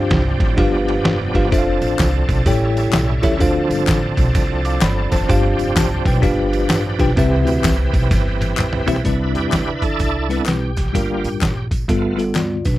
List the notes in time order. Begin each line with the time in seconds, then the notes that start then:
Already playing: G2 F3 C4 D4 F4 G4 C5 F5
0.10 C2, kick, snare, ride bell
0.40 A1, kick, ride bell
0.57 G1 G2 B3 D4 F4 G4 B4 F5, kick, ride bell
0.88 ride bell
1.05 F1, snare, ride bell
1.34 G1 D4 F4 G4 B4 F5, kick, snare, ride bell
1.43 snare
1.51 F1 C4 D4 F4 A4 C5 E5, kick, ride bell, tambourine
1.58 F5
1.81 A1, ride bell, tambourine
1.99 C2, kick, snare, clap, ride bell, tambourine
2.29 B1, kick, ride bell, tambourine
2.46 A1 A2 G3 C#4 E4 G4 A4 C#5 G5, kick, ride bell, tambourine
2.77 ride bell, tambourine
2.93 B1, snare, clap, ride bell, tambourine
3.23 C#2 E4 G4 A4 C#5 E5, kick, snare, ride bell, tambourine
3.31 snare
3.40 D2 D3 F3 C4 D4 F4 A4 C5 F5, kick, ride bell, tambourine
3.70 G1, ride bell, tambourine
3.87 A1, kick, snare, clap, ride bell, tambourine
4.17 B1, kick, ride bell, tambourine
4.35 C2, kick, ride bell, tambourine
4.65 F5 D6, ride bell, tambourine
4.81 G1 D5 B5, snare, clap, ride bell, tambourine
5.12 F1 C5 A5, kick, snare, ride bell, tambourine
5.20 snare
5.29 G1 G2 D4 F4 G4 C5 F5, kick, ride bell, tambourine
5.59 F1, ride bell, tambourine
5.76 C2 C5 A5, kick, snare, clap, ride bell, tambourine
6.05 B1 B4 G5, kick, ride bell, tambourine
6.22 G1 G2 F3 D4 F4 G4 B4 F5, kick, ride bell, tambourine
6.53 ride bell, tambourine
6.70 A1, snare, clap, ride bell, tambourine
6.99 B1 D4 F4 G4 B4 G5, kick, snare, ride bell, tambourine
7.08 snare
7.17 C2 C3 E3 C4 E4 G4 B4 E5, kick, ride bell, tambourine
7.46 D2, ride bell, tambourine
7.64 C2, kick, snare, clap, ride bell, tambourine
7.93 B1, kick, ride bell, tambourine
8.11 G1, kick, snare, ride bell, tambourine
8.41 high tom, ride bell, tambourine
8.57 A1, clap, mid tom, ride bell, tambourine
8.73 mid tom
8.87 B1 C4 E4 G4 B4 E5, floor tom, ride bell, tambourine
8.96 floor tom
9.04 C2 C3 G3 C4 D4 E4 B4, kick, closed hi-hat, tambourine
9.34 E2 G4, closed hi-hat, tambourine
9.52 D2, kick, snare, clap, closed hi-hat, tambourine
9.75 B4
9.82 A4, kick, closed hi-hat, tambourine
9.99 C2, kick, closed hi-hat, tambourine
10.29 G3 B3 C4 D4 E4 B4, closed hi-hat, tambourine
10.46 B1 G4, snare, clap, closed hi-hat, tambourine
10.76 kick, snare, closed hi-hat, tambourine
10.86 snare
10.93 G1 G2 G3 A#3 D4 F4 A#4, kick, closed hi-hat, tambourine
11.24 A1, closed hi-hat, tambourine
11.41 A#1, kick, snare, clap, closed hi-hat, tambourine
11.71 kick, closed hi-hat, tambourine
11.88 G1 G2 G3 A3 B3 F4 A4, kick, closed hi-hat, tambourine
12.17 G3 B3 F4 A4, closed hi-hat, tambourine
12.35 D2 F4 D5, snare, clap, closed hi-hat, tambourine
12.65 B1 D4 B4, kick, snare, closed hi-hat, tambourine
12.74 snare